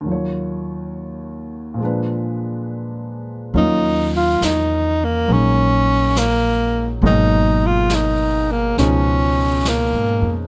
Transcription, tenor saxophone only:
X:1
M:4/4
L:1/16
Q:"Swing" 1/4=69
K:Ebm
V:1 name="Tenor saxophone"
z16 | E2 F2 E2 B,2 D4 B,3 z | E2 F2 E2 B,2 D4 B,3 z |]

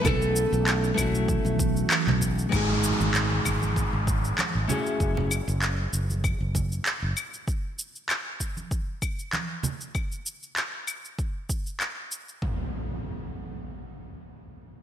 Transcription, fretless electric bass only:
X:1
M:4/4
L:1/16
Q:"Swing 16ths" 1/4=97
K:F#dor
V:1 name="Fretless electric bass" clef=bass
B,,,3 B,,,3 B,,,3 B,,,3 z B,,,3 | G,,,3 G,,,3 G,,,3 G,,,3 z G,,, z2 | F,,,3 F,,,3 F,,,3 F,,,3 z F,,, z2 | z16 |
z16 | z16 |]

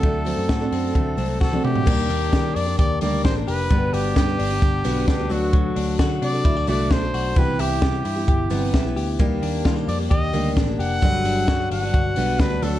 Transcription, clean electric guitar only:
X:1
M:4/4
L:1/16
Q:1/4=131
K:G
V:1 name="Clean electric guitar"
[A,CF]2 C2 F2 C2 A,2 C2 F2 A,2 | _B,2 D2 G2 D2 G2 B,2 D2 G2 | B,2 D4 D4 B,2 D2 F,2 | F,2 D2 F2 D2 E F A,2 D2 F2 |
E,2 E2 G2 E2 G2 B,2 E2 G2 | _B,2 D2 =F G3 G2 B,2 D2 G2 | F,2 D2 F2 D2 F2 B,2 D2 F,2 |]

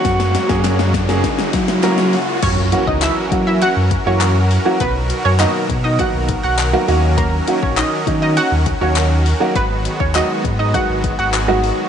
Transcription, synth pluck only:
X:1
M:4/4
L:1/16
Q:1/4=101
K:F#mix
V:1 name="Synth pluck"
z16 | [Cc] z2 [Dd] [Ee] z2 [Ee] [Ff] z2 [Cc] z4 | [B,B] z2 [Cc] [Dd] z2 [Dd] [Ff] z2 [Ff] z4 | [A,A] z2 [Cc] [Dd] z2 [Dd] [Ff] z2 [Cc] z4 |
[B,B] z2 [Cc] [Dd] z2 [Dd] [Ff] z2 [Ff] z4 |]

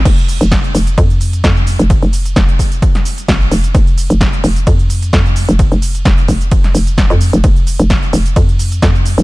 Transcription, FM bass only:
X:1
M:4/4
L:1/16
Q:"Swing 16ths" 1/4=130
K:Fm
V:1 name="FM bass" clef=bass
F,,,3 F,,,3 F,,,2 F,,4 F,,3 F,,,- | F,,, F,,,3 F,,,2 z6 A,,,2 F,,,2 | F,,,3 F,,,3 F,,,2 F,,4 F,,3 F,,,- | F,,, F,,,3 F,,,2 F,,,4 F,,,3 F,,2 F,,, |
F,,,3 F,,,3 F,,,2 F,,4 F,,3 F,,, |]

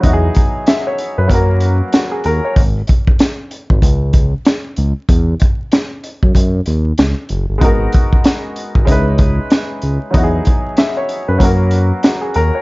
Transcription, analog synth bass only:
X:1
M:4/4
L:1/16
Q:"Swing 16ths" 1/4=95
K:Elyd
V:1 name="Analog synth bass" clef=bass
E,,2 z4 z F,, F,,4 z2 D,, z | G,,,2 z4 z G,,, C,,4 z2 C,, z | E,,2 z4 z F,, F,,2 D,,2 C,, z F,,, =G,,, | G,,,2 z4 z G,,, C,,4 z2 C,, z |
E,,2 z4 z F,, F,,4 z2 D,, z |]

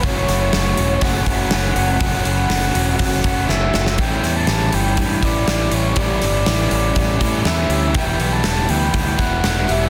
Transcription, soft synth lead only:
X:1
M:4/4
L:1/16
Q:1/4=121
K:Amix
V:1 name="Soft synth lead"
c3 c4- c f8- | f12 e4 | g3 a3 g4 d4 c2 | d12 e4 |
g3 a3 g4 f4 e2 |]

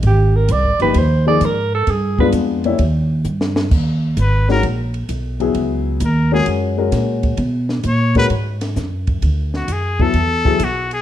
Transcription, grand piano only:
X:1
M:4/4
L:1/8
Q:"Swing" 1/4=131
K:Eb
V:1 name="Grand piano"
z3 [F,B,EG] z [F,B,EA] z2 | z [A,=B,DF]2 [G,_B,_D=E] z4 | [K:G#m] z3 [D,G,CF] z3 [F,B,EG]- | [F,B,EG]2 z [G,CFA]2 [G,CFA]3 |
z3 [G,CFA] z4 | z3 [F,B,E=A] z [F,B,EG] z2 |]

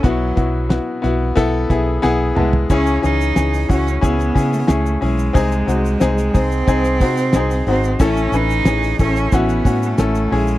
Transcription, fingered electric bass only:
X:1
M:4/4
L:1/16
Q:1/4=90
K:Bmix
V:1 name="Fingered electric bass" clef=bass
B,,,2 B,,,3 z B,,,2 B,,,2 B,,,2 B,,,2 ^B,,,2 | C,,2 C,,2 C,,2 C,,2 C,,2 C,2 C,,2 B,,,2 | ^B,,,2 B,,,2 B,,,2 B,,,2 B,,,2 ^B,,2 B,,,2 G,,,2 | A,,,2 A,,,2 A,,,2 A,,,2 A,,,2 A,,2 A,,,2 ^A,,,2 |]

